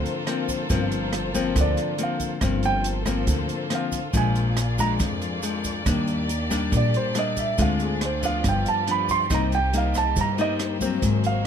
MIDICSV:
0, 0, Header, 1, 6, 480
1, 0, Start_track
1, 0, Key_signature, -2, "minor"
1, 0, Tempo, 430416
1, 776, Time_signature, 4, 2, 24, 8
1, 12790, End_track
2, 0, Start_track
2, 0, Title_t, "Grand piano"
2, 0, Program_c, 0, 0
2, 1792, Note_on_c, 0, 74, 75
2, 2212, Note_off_c, 0, 74, 0
2, 2267, Note_on_c, 0, 77, 77
2, 2916, Note_off_c, 0, 77, 0
2, 2961, Note_on_c, 0, 79, 95
2, 3181, Note_off_c, 0, 79, 0
2, 4180, Note_on_c, 0, 77, 73
2, 4605, Note_off_c, 0, 77, 0
2, 4651, Note_on_c, 0, 80, 74
2, 5308, Note_off_c, 0, 80, 0
2, 5354, Note_on_c, 0, 82, 92
2, 5492, Note_off_c, 0, 82, 0
2, 7549, Note_on_c, 0, 74, 75
2, 7755, Note_off_c, 0, 74, 0
2, 7769, Note_on_c, 0, 72, 77
2, 7985, Note_off_c, 0, 72, 0
2, 8015, Note_on_c, 0, 75, 72
2, 8228, Note_off_c, 0, 75, 0
2, 8241, Note_on_c, 0, 76, 76
2, 8461, Note_off_c, 0, 76, 0
2, 8496, Note_on_c, 0, 77, 83
2, 8708, Note_off_c, 0, 77, 0
2, 8729, Note_on_c, 0, 68, 60
2, 8945, Note_off_c, 0, 68, 0
2, 8980, Note_on_c, 0, 72, 68
2, 9190, Note_off_c, 0, 72, 0
2, 9205, Note_on_c, 0, 77, 83
2, 9423, Note_off_c, 0, 77, 0
2, 9464, Note_on_c, 0, 79, 77
2, 9672, Note_off_c, 0, 79, 0
2, 9686, Note_on_c, 0, 81, 85
2, 9903, Note_off_c, 0, 81, 0
2, 9939, Note_on_c, 0, 83, 76
2, 10150, Note_off_c, 0, 83, 0
2, 10160, Note_on_c, 0, 84, 97
2, 10380, Note_off_c, 0, 84, 0
2, 10420, Note_on_c, 0, 82, 74
2, 10630, Note_off_c, 0, 82, 0
2, 10647, Note_on_c, 0, 79, 89
2, 10863, Note_off_c, 0, 79, 0
2, 10902, Note_on_c, 0, 77, 78
2, 11111, Note_off_c, 0, 77, 0
2, 11125, Note_on_c, 0, 81, 86
2, 11342, Note_off_c, 0, 81, 0
2, 11384, Note_on_c, 0, 82, 82
2, 11592, Note_off_c, 0, 82, 0
2, 11610, Note_on_c, 0, 75, 92
2, 11743, Note_off_c, 0, 75, 0
2, 12563, Note_on_c, 0, 77, 82
2, 12781, Note_off_c, 0, 77, 0
2, 12790, End_track
3, 0, Start_track
3, 0, Title_t, "Violin section"
3, 0, Program_c, 1, 48
3, 0, Note_on_c, 1, 58, 71
3, 0, Note_on_c, 1, 65, 70
3, 0, Note_on_c, 1, 69, 66
3, 0, Note_on_c, 1, 72, 79
3, 2653, Note_off_c, 1, 72, 0
3, 2664, Note_off_c, 1, 58, 0
3, 2665, Note_off_c, 1, 65, 0
3, 2666, Note_off_c, 1, 69, 0
3, 2692, Note_on_c, 1, 65, 61
3, 2693, Note_on_c, 1, 69, 66
3, 2693, Note_on_c, 1, 72, 75
3, 2696, Note_on_c, 1, 58, 69
3, 4594, Note_off_c, 1, 69, 0
3, 4595, Note_off_c, 1, 72, 0
3, 4596, Note_off_c, 1, 58, 0
3, 4609, Note_on_c, 1, 58, 67
3, 4610, Note_on_c, 1, 74, 73
3, 4613, Note_on_c, 1, 68, 62
3, 6494, Note_off_c, 1, 65, 0
3, 6514, Note_off_c, 1, 68, 0
3, 6548, Note_on_c, 1, 62, 64
3, 6549, Note_on_c, 1, 67, 64
3, 8413, Note_off_c, 1, 58, 0
3, 8442, Note_off_c, 1, 62, 0
3, 8443, Note_off_c, 1, 67, 0
3, 8452, Note_on_c, 1, 68, 62
3, 8454, Note_on_c, 1, 65, 64
3, 8457, Note_on_c, 1, 60, 62
3, 9403, Note_off_c, 1, 68, 0
3, 9406, Note_off_c, 1, 60, 0
3, 9417, Note_on_c, 1, 67, 68
3, 9418, Note_on_c, 1, 59, 72
3, 10327, Note_off_c, 1, 74, 0
3, 10355, Note_off_c, 1, 65, 0
3, 10366, Note_off_c, 1, 59, 0
3, 10376, Note_on_c, 1, 58, 69
3, 10382, Note_on_c, 1, 63, 63
3, 10382, Note_on_c, 1, 72, 79
3, 12266, Note_off_c, 1, 67, 0
3, 12278, Note_off_c, 1, 63, 0
3, 12299, Note_on_c, 1, 68, 64
3, 12301, Note_on_c, 1, 66, 68
3, 12790, Note_off_c, 1, 58, 0
3, 12790, Note_off_c, 1, 66, 0
3, 12790, Note_off_c, 1, 68, 0
3, 12790, Note_off_c, 1, 72, 0
3, 12790, End_track
4, 0, Start_track
4, 0, Title_t, "Nylon-string guitar"
4, 0, Program_c, 2, 24
4, 0, Note_on_c, 2, 50, 54
4, 0, Note_on_c, 2, 53, 63
4, 0, Note_on_c, 2, 58, 55
4, 0, Note_on_c, 2, 60, 70
4, 260, Note_off_c, 2, 53, 0
4, 264, Note_off_c, 2, 58, 0
4, 264, Note_off_c, 2, 60, 0
4, 294, Note_on_c, 2, 53, 60
4, 300, Note_on_c, 2, 58, 60
4, 308, Note_on_c, 2, 60, 64
4, 736, Note_off_c, 2, 53, 0
4, 740, Note_off_c, 2, 58, 0
4, 742, Note_off_c, 2, 60, 0
4, 751, Note_off_c, 2, 50, 0
4, 773, Note_on_c, 2, 43, 59
4, 774, Note_on_c, 2, 53, 63
4, 778, Note_on_c, 2, 58, 57
4, 784, Note_on_c, 2, 60, 64
4, 1456, Note_off_c, 2, 53, 0
4, 1458, Note_off_c, 2, 58, 0
4, 1461, Note_off_c, 2, 60, 0
4, 1498, Note_on_c, 2, 53, 59
4, 1501, Note_on_c, 2, 58, 60
4, 1506, Note_on_c, 2, 60, 67
4, 1710, Note_off_c, 2, 43, 0
4, 1732, Note_on_c, 2, 50, 53
4, 2178, Note_off_c, 2, 53, 0
4, 2180, Note_off_c, 2, 58, 0
4, 2181, Note_off_c, 2, 60, 0
4, 2210, Note_on_c, 2, 53, 58
4, 2216, Note_on_c, 2, 58, 55
4, 2220, Note_on_c, 2, 60, 59
4, 2654, Note_off_c, 2, 53, 0
4, 2657, Note_off_c, 2, 58, 0
4, 2659, Note_off_c, 2, 60, 0
4, 2669, Note_off_c, 2, 50, 0
4, 2691, Note_on_c, 2, 43, 57
4, 2693, Note_on_c, 2, 53, 58
4, 2698, Note_on_c, 2, 58, 57
4, 2699, Note_on_c, 2, 60, 62
4, 3375, Note_off_c, 2, 53, 0
4, 3376, Note_off_c, 2, 58, 0
4, 3379, Note_off_c, 2, 60, 0
4, 3405, Note_on_c, 2, 53, 54
4, 3411, Note_on_c, 2, 58, 57
4, 3416, Note_on_c, 2, 60, 64
4, 3630, Note_off_c, 2, 43, 0
4, 3650, Note_on_c, 2, 50, 52
4, 4092, Note_off_c, 2, 53, 0
4, 4094, Note_off_c, 2, 58, 0
4, 4097, Note_off_c, 2, 60, 0
4, 4130, Note_on_c, 2, 53, 54
4, 4134, Note_on_c, 2, 58, 54
4, 4140, Note_on_c, 2, 60, 65
4, 4442, Note_off_c, 2, 53, 0
4, 4444, Note_off_c, 2, 58, 0
4, 4446, Note_off_c, 2, 60, 0
4, 4589, Note_off_c, 2, 50, 0
4, 4611, Note_on_c, 2, 53, 56
4, 4613, Note_on_c, 2, 46, 57
4, 4617, Note_on_c, 2, 56, 56
4, 4621, Note_on_c, 2, 62, 66
4, 5090, Note_off_c, 2, 53, 0
4, 5092, Note_off_c, 2, 56, 0
4, 5095, Note_off_c, 2, 62, 0
4, 5332, Note_on_c, 2, 53, 55
4, 5339, Note_on_c, 2, 56, 57
4, 5340, Note_on_c, 2, 62, 67
4, 5550, Note_off_c, 2, 46, 0
4, 5574, Note_on_c, 2, 41, 50
4, 6015, Note_off_c, 2, 53, 0
4, 6017, Note_off_c, 2, 56, 0
4, 6019, Note_off_c, 2, 62, 0
4, 6050, Note_on_c, 2, 53, 57
4, 6054, Note_on_c, 2, 56, 52
4, 6060, Note_on_c, 2, 62, 63
4, 6494, Note_off_c, 2, 53, 0
4, 6496, Note_off_c, 2, 56, 0
4, 6499, Note_off_c, 2, 62, 0
4, 6510, Note_off_c, 2, 41, 0
4, 6531, Note_on_c, 2, 51, 55
4, 6534, Note_on_c, 2, 55, 58
4, 6541, Note_on_c, 2, 58, 56
4, 6543, Note_on_c, 2, 62, 60
4, 7011, Note_off_c, 2, 55, 0
4, 7015, Note_off_c, 2, 58, 0
4, 7015, Note_off_c, 2, 62, 0
4, 7251, Note_on_c, 2, 55, 57
4, 7257, Note_on_c, 2, 58, 57
4, 7264, Note_on_c, 2, 62, 63
4, 7469, Note_off_c, 2, 51, 0
4, 7491, Note_on_c, 2, 46, 57
4, 7934, Note_off_c, 2, 55, 0
4, 7938, Note_off_c, 2, 58, 0
4, 7939, Note_off_c, 2, 62, 0
4, 7974, Note_on_c, 2, 55, 53
4, 7982, Note_on_c, 2, 58, 53
4, 7982, Note_on_c, 2, 62, 59
4, 8416, Note_off_c, 2, 55, 0
4, 8418, Note_off_c, 2, 58, 0
4, 8420, Note_off_c, 2, 62, 0
4, 8428, Note_off_c, 2, 46, 0
4, 8452, Note_on_c, 2, 50, 56
4, 8453, Note_on_c, 2, 56, 59
4, 8459, Note_on_c, 2, 60, 57
4, 8463, Note_on_c, 2, 65, 62
4, 8930, Note_off_c, 2, 56, 0
4, 8932, Note_off_c, 2, 60, 0
4, 8936, Note_off_c, 2, 65, 0
4, 9178, Note_on_c, 2, 53, 54
4, 9180, Note_on_c, 2, 59, 59
4, 9187, Note_on_c, 2, 62, 64
4, 9389, Note_off_c, 2, 50, 0
4, 9419, Note_on_c, 2, 43, 54
4, 9857, Note_off_c, 2, 53, 0
4, 9858, Note_off_c, 2, 59, 0
4, 9862, Note_off_c, 2, 62, 0
4, 9897, Note_on_c, 2, 53, 51
4, 9901, Note_on_c, 2, 59, 51
4, 9907, Note_on_c, 2, 62, 63
4, 10337, Note_off_c, 2, 53, 0
4, 10340, Note_off_c, 2, 59, 0
4, 10341, Note_off_c, 2, 62, 0
4, 10352, Note_off_c, 2, 43, 0
4, 10369, Note_on_c, 2, 48, 57
4, 10371, Note_on_c, 2, 55, 59
4, 10377, Note_on_c, 2, 58, 52
4, 10381, Note_on_c, 2, 63, 67
4, 10681, Note_off_c, 2, 55, 0
4, 10682, Note_off_c, 2, 58, 0
4, 10686, Note_off_c, 2, 63, 0
4, 10854, Note_on_c, 2, 55, 51
4, 10860, Note_on_c, 2, 58, 50
4, 10866, Note_on_c, 2, 63, 59
4, 11308, Note_off_c, 2, 48, 0
4, 11339, Note_on_c, 2, 43, 53
4, 11535, Note_off_c, 2, 55, 0
4, 11539, Note_off_c, 2, 58, 0
4, 11541, Note_off_c, 2, 63, 0
4, 11576, Note_on_c, 2, 55, 65
4, 11578, Note_on_c, 2, 58, 56
4, 11584, Note_on_c, 2, 63, 69
4, 12016, Note_off_c, 2, 55, 0
4, 12017, Note_off_c, 2, 58, 0
4, 12020, Note_off_c, 2, 63, 0
4, 12055, Note_on_c, 2, 54, 60
4, 12060, Note_on_c, 2, 58, 56
4, 12065, Note_on_c, 2, 60, 66
4, 12272, Note_off_c, 2, 43, 0
4, 12292, Note_on_c, 2, 44, 57
4, 12735, Note_off_c, 2, 54, 0
4, 12738, Note_off_c, 2, 58, 0
4, 12740, Note_off_c, 2, 60, 0
4, 12790, Note_off_c, 2, 44, 0
4, 12790, End_track
5, 0, Start_track
5, 0, Title_t, "Upright bass"
5, 0, Program_c, 3, 32
5, 781, Note_on_c, 3, 31, 91
5, 1693, Note_off_c, 3, 31, 0
5, 1737, Note_on_c, 3, 38, 92
5, 1960, Note_off_c, 3, 38, 0
5, 2691, Note_on_c, 3, 31, 88
5, 3608, Note_off_c, 3, 31, 0
5, 3649, Note_on_c, 3, 38, 92
5, 3875, Note_off_c, 3, 38, 0
5, 4611, Note_on_c, 3, 34, 86
5, 5528, Note_off_c, 3, 34, 0
5, 5571, Note_on_c, 3, 41, 88
5, 5796, Note_off_c, 3, 41, 0
5, 6536, Note_on_c, 3, 39, 91
5, 7450, Note_off_c, 3, 39, 0
5, 7496, Note_on_c, 3, 34, 91
5, 7719, Note_off_c, 3, 34, 0
5, 8459, Note_on_c, 3, 38, 91
5, 9372, Note_off_c, 3, 38, 0
5, 9415, Note_on_c, 3, 31, 90
5, 9638, Note_off_c, 3, 31, 0
5, 10377, Note_on_c, 3, 36, 83
5, 11290, Note_off_c, 3, 36, 0
5, 11337, Note_on_c, 3, 43, 89
5, 11558, Note_off_c, 3, 43, 0
5, 12293, Note_on_c, 3, 32, 88
5, 12790, Note_off_c, 3, 32, 0
5, 12790, End_track
6, 0, Start_track
6, 0, Title_t, "Drums"
6, 62, Note_on_c, 9, 82, 26
6, 63, Note_on_c, 9, 42, 27
6, 174, Note_off_c, 9, 42, 0
6, 174, Note_off_c, 9, 82, 0
6, 300, Note_on_c, 9, 37, 60
6, 300, Note_on_c, 9, 42, 42
6, 412, Note_off_c, 9, 37, 0
6, 412, Note_off_c, 9, 42, 0
6, 540, Note_on_c, 9, 36, 25
6, 544, Note_on_c, 9, 42, 27
6, 545, Note_on_c, 9, 82, 62
6, 652, Note_off_c, 9, 36, 0
6, 655, Note_off_c, 9, 42, 0
6, 657, Note_off_c, 9, 82, 0
6, 777, Note_on_c, 9, 82, 61
6, 780, Note_on_c, 9, 36, 62
6, 782, Note_on_c, 9, 42, 44
6, 889, Note_off_c, 9, 82, 0
6, 891, Note_off_c, 9, 36, 0
6, 894, Note_off_c, 9, 42, 0
6, 1021, Note_on_c, 9, 42, 28
6, 1025, Note_on_c, 9, 82, 25
6, 1132, Note_off_c, 9, 42, 0
6, 1136, Note_off_c, 9, 82, 0
6, 1255, Note_on_c, 9, 37, 61
6, 1255, Note_on_c, 9, 42, 49
6, 1367, Note_off_c, 9, 37, 0
6, 1367, Note_off_c, 9, 42, 0
6, 1498, Note_on_c, 9, 36, 23
6, 1498, Note_on_c, 9, 42, 28
6, 1504, Note_on_c, 9, 82, 66
6, 1609, Note_off_c, 9, 36, 0
6, 1610, Note_off_c, 9, 42, 0
6, 1615, Note_off_c, 9, 82, 0
6, 1737, Note_on_c, 9, 36, 58
6, 1737, Note_on_c, 9, 37, 58
6, 1737, Note_on_c, 9, 42, 43
6, 1742, Note_on_c, 9, 82, 65
6, 1849, Note_off_c, 9, 36, 0
6, 1849, Note_off_c, 9, 37, 0
6, 1849, Note_off_c, 9, 42, 0
6, 1853, Note_off_c, 9, 82, 0
6, 1977, Note_on_c, 9, 42, 31
6, 1979, Note_on_c, 9, 82, 26
6, 2088, Note_off_c, 9, 42, 0
6, 2091, Note_off_c, 9, 82, 0
6, 2212, Note_on_c, 9, 42, 46
6, 2324, Note_off_c, 9, 42, 0
6, 2450, Note_on_c, 9, 42, 28
6, 2453, Note_on_c, 9, 36, 24
6, 2458, Note_on_c, 9, 82, 62
6, 2561, Note_off_c, 9, 42, 0
6, 2564, Note_off_c, 9, 36, 0
6, 2570, Note_off_c, 9, 82, 0
6, 2688, Note_on_c, 9, 37, 59
6, 2688, Note_on_c, 9, 42, 40
6, 2692, Note_on_c, 9, 36, 57
6, 2697, Note_on_c, 9, 82, 60
6, 2800, Note_off_c, 9, 37, 0
6, 2800, Note_off_c, 9, 42, 0
6, 2803, Note_off_c, 9, 36, 0
6, 2808, Note_off_c, 9, 82, 0
6, 2929, Note_on_c, 9, 42, 25
6, 2938, Note_on_c, 9, 82, 25
6, 3040, Note_off_c, 9, 42, 0
6, 3049, Note_off_c, 9, 82, 0
6, 3169, Note_on_c, 9, 42, 42
6, 3181, Note_on_c, 9, 82, 51
6, 3281, Note_off_c, 9, 42, 0
6, 3293, Note_off_c, 9, 82, 0
6, 3409, Note_on_c, 9, 37, 58
6, 3409, Note_on_c, 9, 42, 24
6, 3410, Note_on_c, 9, 36, 23
6, 3416, Note_on_c, 9, 82, 63
6, 3520, Note_off_c, 9, 37, 0
6, 3520, Note_off_c, 9, 42, 0
6, 3522, Note_off_c, 9, 36, 0
6, 3527, Note_off_c, 9, 82, 0
6, 3647, Note_on_c, 9, 42, 41
6, 3650, Note_on_c, 9, 36, 59
6, 3656, Note_on_c, 9, 82, 64
6, 3759, Note_off_c, 9, 42, 0
6, 3761, Note_off_c, 9, 36, 0
6, 3767, Note_off_c, 9, 82, 0
6, 3891, Note_on_c, 9, 42, 28
6, 3894, Note_on_c, 9, 82, 26
6, 4003, Note_off_c, 9, 42, 0
6, 4005, Note_off_c, 9, 82, 0
6, 4129, Note_on_c, 9, 37, 60
6, 4129, Note_on_c, 9, 42, 41
6, 4241, Note_off_c, 9, 37, 0
6, 4241, Note_off_c, 9, 42, 0
6, 4371, Note_on_c, 9, 36, 22
6, 4373, Note_on_c, 9, 82, 58
6, 4374, Note_on_c, 9, 42, 26
6, 4482, Note_off_c, 9, 36, 0
6, 4485, Note_off_c, 9, 42, 0
6, 4485, Note_off_c, 9, 82, 0
6, 4611, Note_on_c, 9, 36, 58
6, 4611, Note_on_c, 9, 82, 63
6, 4612, Note_on_c, 9, 42, 43
6, 4722, Note_off_c, 9, 82, 0
6, 4723, Note_off_c, 9, 36, 0
6, 4724, Note_off_c, 9, 42, 0
6, 4855, Note_on_c, 9, 82, 26
6, 4856, Note_on_c, 9, 42, 26
6, 4967, Note_off_c, 9, 82, 0
6, 4968, Note_off_c, 9, 42, 0
6, 5092, Note_on_c, 9, 37, 60
6, 5092, Note_on_c, 9, 42, 46
6, 5097, Note_on_c, 9, 82, 54
6, 5203, Note_off_c, 9, 37, 0
6, 5203, Note_off_c, 9, 42, 0
6, 5208, Note_off_c, 9, 82, 0
6, 5332, Note_on_c, 9, 36, 22
6, 5334, Note_on_c, 9, 42, 26
6, 5337, Note_on_c, 9, 82, 63
6, 5444, Note_off_c, 9, 36, 0
6, 5445, Note_off_c, 9, 42, 0
6, 5448, Note_off_c, 9, 82, 0
6, 5571, Note_on_c, 9, 82, 60
6, 5574, Note_on_c, 9, 36, 58
6, 5575, Note_on_c, 9, 37, 54
6, 5575, Note_on_c, 9, 42, 44
6, 5683, Note_off_c, 9, 82, 0
6, 5686, Note_off_c, 9, 36, 0
6, 5686, Note_off_c, 9, 37, 0
6, 5686, Note_off_c, 9, 42, 0
6, 5817, Note_on_c, 9, 82, 25
6, 5818, Note_on_c, 9, 42, 28
6, 5929, Note_off_c, 9, 82, 0
6, 5930, Note_off_c, 9, 42, 0
6, 6050, Note_on_c, 9, 82, 56
6, 6058, Note_on_c, 9, 42, 42
6, 6162, Note_off_c, 9, 82, 0
6, 6169, Note_off_c, 9, 42, 0
6, 6293, Note_on_c, 9, 82, 59
6, 6294, Note_on_c, 9, 36, 24
6, 6296, Note_on_c, 9, 42, 28
6, 6404, Note_off_c, 9, 82, 0
6, 6406, Note_off_c, 9, 36, 0
6, 6407, Note_off_c, 9, 42, 0
6, 6535, Note_on_c, 9, 36, 61
6, 6536, Note_on_c, 9, 37, 60
6, 6536, Note_on_c, 9, 42, 42
6, 6539, Note_on_c, 9, 82, 62
6, 6646, Note_off_c, 9, 36, 0
6, 6648, Note_off_c, 9, 37, 0
6, 6648, Note_off_c, 9, 42, 0
6, 6650, Note_off_c, 9, 82, 0
6, 6774, Note_on_c, 9, 42, 24
6, 6779, Note_on_c, 9, 82, 28
6, 6885, Note_off_c, 9, 42, 0
6, 6890, Note_off_c, 9, 82, 0
6, 7017, Note_on_c, 9, 42, 44
6, 7023, Note_on_c, 9, 82, 52
6, 7128, Note_off_c, 9, 42, 0
6, 7134, Note_off_c, 9, 82, 0
6, 7257, Note_on_c, 9, 36, 22
6, 7260, Note_on_c, 9, 37, 59
6, 7260, Note_on_c, 9, 42, 23
6, 7261, Note_on_c, 9, 82, 68
6, 7369, Note_off_c, 9, 36, 0
6, 7372, Note_off_c, 9, 37, 0
6, 7372, Note_off_c, 9, 42, 0
6, 7372, Note_off_c, 9, 82, 0
6, 7497, Note_on_c, 9, 36, 57
6, 7499, Note_on_c, 9, 42, 38
6, 7499, Note_on_c, 9, 82, 63
6, 7608, Note_off_c, 9, 36, 0
6, 7610, Note_off_c, 9, 42, 0
6, 7611, Note_off_c, 9, 82, 0
6, 7740, Note_on_c, 9, 42, 26
6, 7741, Note_on_c, 9, 82, 26
6, 7852, Note_off_c, 9, 42, 0
6, 7853, Note_off_c, 9, 82, 0
6, 7973, Note_on_c, 9, 37, 57
6, 7973, Note_on_c, 9, 42, 42
6, 7974, Note_on_c, 9, 82, 56
6, 8085, Note_off_c, 9, 37, 0
6, 8085, Note_off_c, 9, 42, 0
6, 8085, Note_off_c, 9, 82, 0
6, 8215, Note_on_c, 9, 42, 27
6, 8216, Note_on_c, 9, 36, 24
6, 8218, Note_on_c, 9, 82, 63
6, 8327, Note_off_c, 9, 42, 0
6, 8328, Note_off_c, 9, 36, 0
6, 8329, Note_off_c, 9, 82, 0
6, 8454, Note_on_c, 9, 82, 60
6, 8457, Note_on_c, 9, 36, 56
6, 8460, Note_on_c, 9, 42, 42
6, 8565, Note_off_c, 9, 82, 0
6, 8569, Note_off_c, 9, 36, 0
6, 8572, Note_off_c, 9, 42, 0
6, 8694, Note_on_c, 9, 82, 27
6, 8696, Note_on_c, 9, 42, 27
6, 8806, Note_off_c, 9, 82, 0
6, 8808, Note_off_c, 9, 42, 0
6, 8935, Note_on_c, 9, 37, 57
6, 8935, Note_on_c, 9, 42, 45
6, 9047, Note_off_c, 9, 37, 0
6, 9047, Note_off_c, 9, 42, 0
6, 9175, Note_on_c, 9, 42, 26
6, 9176, Note_on_c, 9, 36, 23
6, 9180, Note_on_c, 9, 82, 64
6, 9286, Note_off_c, 9, 42, 0
6, 9287, Note_off_c, 9, 36, 0
6, 9291, Note_off_c, 9, 82, 0
6, 9414, Note_on_c, 9, 37, 60
6, 9414, Note_on_c, 9, 42, 44
6, 9416, Note_on_c, 9, 36, 55
6, 9419, Note_on_c, 9, 82, 64
6, 9525, Note_off_c, 9, 37, 0
6, 9525, Note_off_c, 9, 42, 0
6, 9527, Note_off_c, 9, 36, 0
6, 9530, Note_off_c, 9, 82, 0
6, 9656, Note_on_c, 9, 82, 27
6, 9657, Note_on_c, 9, 42, 29
6, 9768, Note_off_c, 9, 42, 0
6, 9768, Note_off_c, 9, 82, 0
6, 9897, Note_on_c, 9, 42, 44
6, 10008, Note_off_c, 9, 42, 0
6, 10135, Note_on_c, 9, 36, 24
6, 10135, Note_on_c, 9, 82, 60
6, 10137, Note_on_c, 9, 42, 27
6, 10246, Note_off_c, 9, 82, 0
6, 10247, Note_off_c, 9, 36, 0
6, 10248, Note_off_c, 9, 42, 0
6, 10374, Note_on_c, 9, 82, 59
6, 10375, Note_on_c, 9, 36, 60
6, 10376, Note_on_c, 9, 37, 58
6, 10376, Note_on_c, 9, 42, 45
6, 10486, Note_off_c, 9, 82, 0
6, 10487, Note_off_c, 9, 36, 0
6, 10488, Note_off_c, 9, 37, 0
6, 10488, Note_off_c, 9, 42, 0
6, 10619, Note_on_c, 9, 42, 28
6, 10622, Note_on_c, 9, 82, 28
6, 10730, Note_off_c, 9, 42, 0
6, 10733, Note_off_c, 9, 82, 0
6, 10855, Note_on_c, 9, 42, 45
6, 10859, Note_on_c, 9, 82, 50
6, 10966, Note_off_c, 9, 42, 0
6, 10971, Note_off_c, 9, 82, 0
6, 11088, Note_on_c, 9, 82, 66
6, 11096, Note_on_c, 9, 36, 22
6, 11099, Note_on_c, 9, 37, 54
6, 11099, Note_on_c, 9, 42, 27
6, 11200, Note_off_c, 9, 82, 0
6, 11208, Note_off_c, 9, 36, 0
6, 11211, Note_off_c, 9, 37, 0
6, 11211, Note_off_c, 9, 42, 0
6, 11333, Note_on_c, 9, 82, 66
6, 11336, Note_on_c, 9, 36, 61
6, 11338, Note_on_c, 9, 42, 40
6, 11445, Note_off_c, 9, 82, 0
6, 11447, Note_off_c, 9, 36, 0
6, 11449, Note_off_c, 9, 42, 0
6, 11577, Note_on_c, 9, 82, 26
6, 11579, Note_on_c, 9, 42, 26
6, 11688, Note_off_c, 9, 82, 0
6, 11691, Note_off_c, 9, 42, 0
6, 11815, Note_on_c, 9, 37, 60
6, 11815, Note_on_c, 9, 42, 42
6, 11927, Note_off_c, 9, 37, 0
6, 11927, Note_off_c, 9, 42, 0
6, 12053, Note_on_c, 9, 36, 24
6, 12053, Note_on_c, 9, 42, 25
6, 12057, Note_on_c, 9, 82, 59
6, 12164, Note_off_c, 9, 42, 0
6, 12165, Note_off_c, 9, 36, 0
6, 12169, Note_off_c, 9, 82, 0
6, 12292, Note_on_c, 9, 42, 41
6, 12293, Note_on_c, 9, 36, 57
6, 12297, Note_on_c, 9, 82, 61
6, 12404, Note_off_c, 9, 42, 0
6, 12405, Note_off_c, 9, 36, 0
6, 12408, Note_off_c, 9, 82, 0
6, 12531, Note_on_c, 9, 42, 26
6, 12538, Note_on_c, 9, 82, 28
6, 12643, Note_off_c, 9, 42, 0
6, 12650, Note_off_c, 9, 82, 0
6, 12790, End_track
0, 0, End_of_file